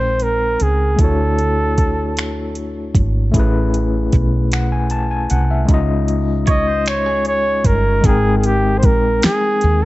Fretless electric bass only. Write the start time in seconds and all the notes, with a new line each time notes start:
Already playing: A#1
0.61 C#2
1.00 D2
2.96 G#1
3.35 A1
4.14 B1
5.31 C2
5.70 C#2
7.66 G1
8.05 G#1
8.84 A#1
9.24 muted fretless electric bass stroke
9.64 D#2